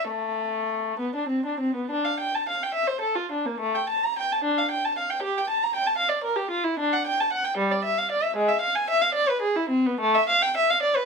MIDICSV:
0, 0, Header, 1, 2, 480
1, 0, Start_track
1, 0, Key_signature, -1, "minor"
1, 0, Tempo, 606673
1, 63, Time_signature, 6, 3, 24, 8
1, 1503, Tempo, 564972
1, 3423, Tempo, 522193
1, 5343, Tempo, 547445
1, 6303, Tempo, 515907
1, 7743, Tempo, 539084
1, 9667, End_track
2, 0, Start_track
2, 0, Title_t, "Violin"
2, 0, Program_c, 0, 40
2, 69, Note_on_c, 0, 57, 53
2, 773, Note_off_c, 0, 57, 0
2, 786, Note_on_c, 0, 59, 42
2, 903, Note_off_c, 0, 59, 0
2, 915, Note_on_c, 0, 62, 40
2, 1020, Note_on_c, 0, 60, 35
2, 1029, Note_off_c, 0, 62, 0
2, 1143, Note_off_c, 0, 60, 0
2, 1154, Note_on_c, 0, 62, 38
2, 1267, Note_on_c, 0, 60, 37
2, 1271, Note_off_c, 0, 62, 0
2, 1385, Note_on_c, 0, 59, 41
2, 1386, Note_off_c, 0, 60, 0
2, 1498, Note_off_c, 0, 59, 0
2, 1507, Note_on_c, 0, 62, 59
2, 1622, Note_off_c, 0, 62, 0
2, 1627, Note_on_c, 0, 77, 49
2, 1744, Note_off_c, 0, 77, 0
2, 1757, Note_on_c, 0, 79, 49
2, 1866, Note_off_c, 0, 79, 0
2, 1884, Note_on_c, 0, 81, 49
2, 1991, Note_off_c, 0, 81, 0
2, 2002, Note_on_c, 0, 77, 51
2, 2107, Note_off_c, 0, 77, 0
2, 2123, Note_on_c, 0, 79, 47
2, 2218, Note_on_c, 0, 76, 53
2, 2228, Note_off_c, 0, 79, 0
2, 2329, Note_on_c, 0, 72, 49
2, 2332, Note_off_c, 0, 76, 0
2, 2444, Note_on_c, 0, 69, 47
2, 2449, Note_off_c, 0, 72, 0
2, 2566, Note_off_c, 0, 69, 0
2, 2570, Note_on_c, 0, 65, 43
2, 2694, Note_off_c, 0, 65, 0
2, 2708, Note_on_c, 0, 62, 43
2, 2824, Note_off_c, 0, 62, 0
2, 2829, Note_on_c, 0, 58, 43
2, 2948, Note_on_c, 0, 57, 59
2, 2950, Note_off_c, 0, 58, 0
2, 3068, Note_off_c, 0, 57, 0
2, 3073, Note_on_c, 0, 79, 47
2, 3191, Note_off_c, 0, 79, 0
2, 3196, Note_on_c, 0, 81, 53
2, 3307, Note_off_c, 0, 81, 0
2, 3329, Note_on_c, 0, 82, 54
2, 3434, Note_off_c, 0, 82, 0
2, 3448, Note_on_c, 0, 79, 51
2, 3557, Note_off_c, 0, 79, 0
2, 3571, Note_on_c, 0, 81, 50
2, 3679, Note_on_c, 0, 62, 56
2, 3682, Note_off_c, 0, 81, 0
2, 3794, Note_off_c, 0, 62, 0
2, 3811, Note_on_c, 0, 77, 46
2, 3921, Note_off_c, 0, 77, 0
2, 3928, Note_on_c, 0, 79, 48
2, 4036, Note_off_c, 0, 79, 0
2, 4057, Note_on_c, 0, 81, 51
2, 4162, Note_off_c, 0, 81, 0
2, 4179, Note_on_c, 0, 77, 48
2, 4280, Note_off_c, 0, 77, 0
2, 4289, Note_on_c, 0, 79, 54
2, 4397, Note_off_c, 0, 79, 0
2, 4400, Note_on_c, 0, 67, 60
2, 4510, Note_off_c, 0, 67, 0
2, 4541, Note_on_c, 0, 79, 51
2, 4643, Note_off_c, 0, 79, 0
2, 4650, Note_on_c, 0, 81, 52
2, 4755, Note_off_c, 0, 81, 0
2, 4776, Note_on_c, 0, 82, 54
2, 4879, Note_off_c, 0, 82, 0
2, 4887, Note_on_c, 0, 79, 56
2, 4991, Note_off_c, 0, 79, 0
2, 4992, Note_on_c, 0, 81, 52
2, 5093, Note_on_c, 0, 77, 62
2, 5106, Note_off_c, 0, 81, 0
2, 5200, Note_on_c, 0, 74, 53
2, 5214, Note_off_c, 0, 77, 0
2, 5332, Note_off_c, 0, 74, 0
2, 5334, Note_on_c, 0, 70, 54
2, 5439, Note_on_c, 0, 67, 51
2, 5454, Note_off_c, 0, 70, 0
2, 5572, Note_on_c, 0, 65, 50
2, 5573, Note_off_c, 0, 67, 0
2, 5684, Note_on_c, 0, 64, 52
2, 5700, Note_off_c, 0, 65, 0
2, 5820, Note_off_c, 0, 64, 0
2, 5822, Note_on_c, 0, 62, 67
2, 5938, Note_on_c, 0, 78, 57
2, 5947, Note_off_c, 0, 62, 0
2, 6061, Note_on_c, 0, 79, 58
2, 6064, Note_off_c, 0, 78, 0
2, 6179, Note_on_c, 0, 81, 54
2, 6180, Note_off_c, 0, 79, 0
2, 6289, Note_on_c, 0, 78, 59
2, 6297, Note_off_c, 0, 81, 0
2, 6398, Note_on_c, 0, 79, 60
2, 6412, Note_off_c, 0, 78, 0
2, 6518, Note_on_c, 0, 55, 60
2, 6529, Note_off_c, 0, 79, 0
2, 6647, Note_off_c, 0, 55, 0
2, 6647, Note_on_c, 0, 74, 53
2, 6768, Note_on_c, 0, 76, 60
2, 6773, Note_off_c, 0, 74, 0
2, 6891, Note_off_c, 0, 76, 0
2, 6898, Note_on_c, 0, 77, 59
2, 7018, Note_off_c, 0, 77, 0
2, 7019, Note_on_c, 0, 74, 58
2, 7133, Note_on_c, 0, 76, 57
2, 7136, Note_off_c, 0, 74, 0
2, 7253, Note_on_c, 0, 56, 76
2, 7255, Note_off_c, 0, 76, 0
2, 7362, Note_on_c, 0, 76, 58
2, 7373, Note_off_c, 0, 56, 0
2, 7482, Note_on_c, 0, 77, 63
2, 7490, Note_off_c, 0, 76, 0
2, 7609, Note_off_c, 0, 77, 0
2, 7614, Note_on_c, 0, 80, 64
2, 7739, Note_off_c, 0, 80, 0
2, 7750, Note_on_c, 0, 76, 67
2, 7854, Note_on_c, 0, 77, 62
2, 7862, Note_off_c, 0, 76, 0
2, 7970, Note_on_c, 0, 74, 69
2, 7975, Note_off_c, 0, 77, 0
2, 8090, Note_off_c, 0, 74, 0
2, 8100, Note_on_c, 0, 71, 61
2, 8210, Note_on_c, 0, 68, 58
2, 8218, Note_off_c, 0, 71, 0
2, 8332, Note_off_c, 0, 68, 0
2, 8339, Note_on_c, 0, 64, 60
2, 8458, Note_on_c, 0, 60, 55
2, 8463, Note_off_c, 0, 64, 0
2, 8583, Note_off_c, 0, 60, 0
2, 8606, Note_on_c, 0, 59, 54
2, 8723, Note_off_c, 0, 59, 0
2, 8734, Note_on_c, 0, 57, 73
2, 8846, Note_off_c, 0, 57, 0
2, 8860, Note_on_c, 0, 76, 65
2, 8970, Note_off_c, 0, 76, 0
2, 8988, Note_on_c, 0, 77, 63
2, 9091, Note_off_c, 0, 77, 0
2, 9106, Note_on_c, 0, 79, 66
2, 9209, Note_off_c, 0, 79, 0
2, 9236, Note_on_c, 0, 76, 65
2, 9330, Note_off_c, 0, 76, 0
2, 9357, Note_on_c, 0, 77, 67
2, 9451, Note_off_c, 0, 77, 0
2, 9463, Note_on_c, 0, 74, 64
2, 9561, Note_off_c, 0, 74, 0
2, 9585, Note_on_c, 0, 71, 58
2, 9667, Note_off_c, 0, 71, 0
2, 9667, End_track
0, 0, End_of_file